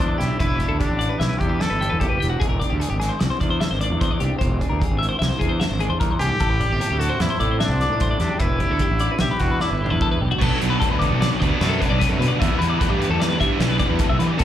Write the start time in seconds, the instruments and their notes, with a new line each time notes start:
Already playing: fingered electric bass E2, clean electric guitar E3 D4 G4, trumpet D4
0.00 clean electric guitar E2 E4, kick
0.08 clean electric guitar D5
0.18 fingered electric bass B1, clean electric guitar D4 G4, trumpet E4, snare, closed hi-hat
0.39 fingered electric bass E1, clean electric guitar E2 D4 B4, trumpet E4, kick, closed hi-hat
0.59 clean electric guitar D4 G4, kick, closed hi-hat
0.69 fingered electric bass D2, clean electric guitar A4
0.79 trumpet D4, clean electric guitar G4, kick, closed hi-hat
0.90 fingered electric bass A1
0.99 clean electric guitar E4 D5, closed hi-hat
1.09 clean electric guitar B4
1.19 fingered electric bass B1, clean electric guitar B2 E5, trumpet E4, snare, closed hi-hat
1.29 clean electric guitar B4
1.38 fingered electric bass E2, clean electric guitar D4 G4, trumpet G4, kick, closed hi-hat
1.49 clean electric guitar B4
1.60 clean electric guitar E3 D5, trumpet A4, snare, closed hi-hat
1.70 fingered electric bass G1, clean electric guitar B4
1.81 clean electric guitar D4 G4, closed hi-hat
1.90 fingered electric bass E2, clean electric guitar B4
2.00 fingered electric bass F#1, clean electric guitar E2 E4 A4, trumpet G4, kick, closed hi-hat
2.09 clean electric guitar B4
2.20 fingered electric bass E1, clean electric guitar D4 G4, closed hi-hat
2.29 clean electric guitar F#4
2.40 fingered electric bass E1, clean electric guitar E2 G#4, kick, closed hi-hat
2.49 clean electric guitar A#4
2.60 clean electric guitar D4 D5, kick, closed hi-hat
2.70 fingered electric bass D2, clean electric guitar G4
2.80 clean electric guitar G#4, closed hi-hat
2.90 fingered electric bass G#1, clean electric guitar G4
3.00 clean electric guitar E4 G#4, snare, closed hi-hat
3.09 clean electric guitar C5
3.19 fingered electric bass C2, clean electric guitar E2 D5, snare, closed hi-hat
3.30 clean electric guitar C5
3.41 fingered electric bass E2, clean electric guitar D4 D5, kick, closed hi-hat
3.50 clean electric guitar C5
3.60 clean electric guitar E3 E5, snare, closed hi-hat
3.71 fingered electric bass G#1, clean electric guitar C5
3.81 clean electric guitar D4 D5, closed hi-hat
3.90 fingered electric bass E2
4.01 clean electric guitar E2 G#4 C5, kick, closed hi-hat
4.11 clean electric guitar D5
4.20 fingered electric bass C2, clean electric guitar D4 G4, closed hi-hat
4.39 fingered electric bass E1, clean electric guitar E2 G4 C5, kick, closed hi-hat
4.59 clean electric guitar D4 G#4, kick, closed hi-hat
4.69 fingered electric bass D2, clean electric guitar A#4
4.79 clean electric guitar G4 G#4, kick, closed hi-hat
4.90 fingered electric bass G#1
4.99 clean electric guitar E5
5.03 clean electric guitar E4, closed hi-hat
5.09 clean electric guitar C5
5.19 fingered electric bass C2, clean electric guitar E2 E5, snare, closed hi-hat
5.28 clean electric guitar C5
5.39 fingered electric bass E2, clean electric guitar G#4, kick, closed hi-hat
5.44 clean electric guitar D4
5.49 clean electric guitar C5
5.60 clean electric guitar E5, snare, closed hi-hat
5.64 clean electric guitar E3
5.69 fingered electric bass G#1, clean electric guitar C5
5.80 clean electric guitar D4 G#4, closed hi-hat
5.90 fingered electric bass E2, clean electric guitar C5
6.00 clean electric guitar A#4, kick, closed hi-hat
6.04 clean electric guitar G2
6.10 clean electric guitar C5
6.19 fingered electric bass C2, trumpet G4, clean electric guitar G#4, closed hi-hat
6.24 clean electric guitar G#2
6.30 clean electric guitar G4
6.40 fingered electric bass A1, clean electric guitar A2 E4 A4, kick, closed hi-hat
6.50 clean electric guitar B4
6.60 clean electric guitar A3 D5, kick, closed hi-hat
6.71 fingered electric bass G1, clean electric guitar C4 G4
6.80 clean electric guitar A4, snare, closed hi-hat
6.86 clean electric guitar E4
6.90 fingered electric bass D2, clean electric guitar G4
6.99 trumpet F#4, clean electric guitar A4, closed hi-hat
7.04 clean electric guitar E4
7.09 clean electric guitar C5
7.20 fingered electric bass E2, clean electric guitar E3 D5, trumpet E4, snare, closed hi-hat
7.30 clean electric guitar C5
7.40 fingered electric bass A2, clean electric guitar D5, kick, closed hi-hat
7.45 clean electric guitar C4
7.51 clean electric guitar C5
7.59 trumpet D4, clean electric guitar E5, snare, closed hi-hat
7.63 clean electric guitar E3
7.68 fingered electric bass C2, clean electric guitar C5
7.81 clean electric guitar A3 D5, snare, closed hi-hat
7.89 fingered electric bass A2
7.93 clean electric guitar C4
8.00 clean electric guitar G2 C5, kick, closed hi-hat
8.11 clean electric guitar D5
8.20 fingered electric bass E2, clean electric guitar F#2 G4, trumpet D4, snare, closed hi-hat
8.39 fingered electric bass E1, clean electric guitar E2 D4 B4, trumpet E4, kick, closed hi-hat
8.60 clean electric guitar D4 G4, kick, closed hi-hat
8.70 fingered electric bass D2, clean electric guitar A4
8.79 clean electric guitar G4, kick, closed hi-hat
8.83 clean electric guitar D4
8.90 fingered electric bass A1
8.99 clean electric guitar D5, closed hi-hat
9.05 clean electric guitar D4
9.11 clean electric guitar B4
9.19 fingered electric bass B1, trumpet G4, clean electric guitar E5, snare, closed hi-hat
9.25 clean electric guitar B2
9.31 clean electric guitar B4
9.39 fingered electric bass E2, clean electric guitar D4 G4, trumpet F#4, kick, snare, closed hi-hat
9.51 clean electric guitar B4
9.60 clean electric guitar E3 D5, trumpet E4, snare
9.70 fingered electric bass G1, clean electric guitar B4
9.81 clean electric guitar D4 G4
9.86 high tom
9.90 fingered electric bass E2, clean electric guitar B4
10.01 clean electric guitar G2 A4, kick, mid tom
10.11 clean electric guitar B4, mid tom
10.21 fingered electric bass B1, clean electric guitar A2 G4
10.31 clean electric guitar F#4
10.38 fingered electric bass B1, overdriven electric guitar B2 F#3 B3, clean electric guitar B2 F#3 A4, kick, crash
10.43 clean electric guitar A3 D4 A4, overdriven electric guitar D4
10.61 fingered electric bass B1, clean electric guitar F#3 F#4, closed hi-hat
10.70 clean electric guitar B4
10.80 clean electric guitar A4, kick, closed hi-hat
10.84 clean electric guitar A3
10.91 fingered electric bass D2, clean electric guitar B4
10.99 clean electric guitar A4 D5, kick, closed hi-hat
11.10 fingered electric bass B1, clean electric guitar A4
11.21 clean electric guitar D4 D5, snare, closed hi-hat
11.30 clean electric guitar B4
11.40 fingered electric bass D2, overdriven electric guitar B3 D4, clean electric guitar B4 D5, kick, closed hi-hat
11.45 overdriven electric guitar B2 F#3
11.60 fingered electric bass F#2, overdriven electric guitar B2 F#3 B3, clean electric guitar D4 B4, snare, closed hi-hat
11.65 overdriven electric guitar D4
11.69 clean electric guitar A4
11.80 clean electric guitar F#3 B4, kick, closed hi-hat
11.90 fingered electric bass B1, clean electric guitar D5
11.99 clean electric guitar C3 B4, kick, snare, closed hi-hat
12.09 fingered electric bass F#2, clean electric guitar A4
12.19 fingered electric bass B2, clean electric guitar D3 B4, closed hi-hat
12.28 clean electric guitar D5
12.39 clean electric guitar E2 E5, fingered electric bass E2, overdriven electric guitar E3 G3 B3, kick, closed hi-hat
12.43 overdriven electric guitar E4
12.59 fingered electric bass E2, clean electric guitar E3 B4, closed hi-hat
12.70 clean electric guitar D5
12.79 clean electric guitar A3 B4, kick, closed hi-hat
12.89 fingered electric bass G2, clean electric guitar D5
12.99 clean electric guitar G4 B4, closed hi-hat
13.09 fingered electric bass E2, clean electric guitar A4
13.20 clean electric guitar D4 D5, snare, closed hi-hat
13.29 clean electric guitar B4
13.39 fingered electric bass G2, overdriven electric guitar E3 G3 B3 E4, clean electric guitar E4 E5, kick, closed hi-hat
13.51 clean electric guitar F#4
13.59 fingered electric bass B1, overdriven electric guitar E3 G3 B3 E4, clean electric guitar D5, snare, closed hi-hat
13.64 clean electric guitar D4
13.70 clean electric guitar B4
13.79 clean electric guitar E3 D5, kick, closed hi-hat
13.89 fingered electric bass E2, clean electric guitar B4
13.99 clean electric guitar E2 A4, kick, closed hi-hat
14.09 fingered electric bass B1, clean electric guitar E5
14.19 fingered electric bass E3, clean electric guitar E3 B4, closed hi-hat
14.27 clean electric guitar D5
14.37 fingered electric bass D2, overdriven electric guitar D3 A3 C4 F#4, clean electric guitar A4, kick, closed hi-hat